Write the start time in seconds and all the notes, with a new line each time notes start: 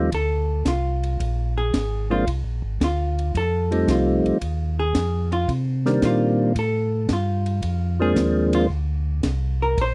Already playing: D#2 F3 G3 A3 C4 D#4
0.12 D2 A4, kick, ride
0.65 C2 F4, kick, snare, hi-hat pedal, ride
1.03 ride
1.20 A#1, kick, ride
1.58 G#4
1.73 G#1, kick, snare, hi-hat pedal, ride
2.10 F3 G#3 A#3 C4 D4 F4
2.27 C2, kick, ride
2.44 A#1
2.62 G#1
2.80 D2 F4, kick, snare, hi-hat pedal, ride
3.19 ride
3.34 F2 A4, kick, ride
3.71 F3 G3 A3 C4 D#4, ride
3.88 C2 F4, kick, snare, hi-hat pedal, ride
4.24 C2, ride
4.41 D#2, kick, ride
4.79 G#4
4.95 F2, kick, snare, hi-hat pedal, ride
5.32 F4, ride
5.48 C3, kick, ride
5.86 D#3 G3 A#3 C4 D4, snare
6.02 A#2 F4, kick, snare, hi-hat pedal, ride
6.55 A2 A4, kick, ride
7.09 G2, kick, snare, hi-hat pedal, ride
7.13 F4
7.46 ride
7.62 F2, kick, ride
8.00 F3 G#3 A#3 C4 D4 G#4
8.16 D#2, kick, snare, hi-hat pedal, ride
8.53 F4, ride
8.69 D2, kick
9.23 C2, kick, snare, hi-hat pedal, ride
9.62 A#4
9.77 A#1, kick, ride
9.81 C5